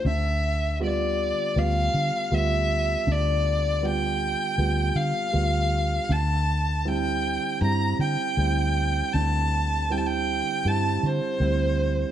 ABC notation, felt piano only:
X:1
M:4/4
L:1/8
Q:1/4=79
K:Gdor
V:1 name="Felt piano"
D,2 [G,=B,F]2 [G,B,F]2 [G,B,F]2 | D,2 [G,=B,F]2 [G,B,F]2 [G,B,F]2 | D,2 [G,CE]2 [G,CE]2 [G,CE]2 | D,2 [G,CE]2 [G,CE]2 [G,CE]2 |]